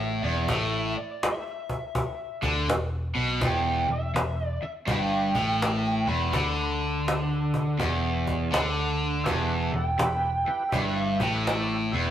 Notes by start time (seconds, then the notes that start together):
Already playing: A1 A2 E5
0.00 cajon slap
0.23 E1 E2 D5
0.48 A1 A2 E5, cajon bass
0.97 D5
1.23 E5, cajon slap
1.48 cajon slap
1.69 cajon bass
1.95 cajon bass
2.43 D2 D3, cajon bass
2.67 E1 E2, cajon slap
3.15 B1 B2
3.41 E1 E2, cajon bass
3.45 G5
3.88 E1 E2 E5
4.14 E1 E2, cajon slap
4.40 cajon slap
4.46 D5
4.61 E5, muted picked electric bass stroke, muted overdriven electric guitar stroke
4.87 G1 G2, cajon bass
4.92 G5
5.35 A1 A2, cajon bass
5.62 cajon slap
5.86 cajon slap
6.07 E1 E2 B5
6.33 D2 D3, cajon bass
7.08 cajon slap
7.32 cajon slap
7.54 cajon bass
7.79 E1 E2, cajon bass
8.27 cajon bass
8.52 D2 D3, cajon slap
9.24 E1 E2 E4 G4 B4 A5, cajon bass
9.71 E1 E2 E4 G4 A4
9.76 G5
9.97 E1 E2 E4 G4 B4, cajon slap
10.44 E4 G4 B4, muted picked electric bass stroke
10.48 G5, muted overdriven electric guitar stroke
10.69 G1 E4 G4 B4, cajon bass
10.73 G2 E5
11.18 A1 A2 E4 G4 B4, cajon bass
11.23 G5
11.45 E4 G4 D5, cajon slap
11.92 E1 E2 E4 G4 B4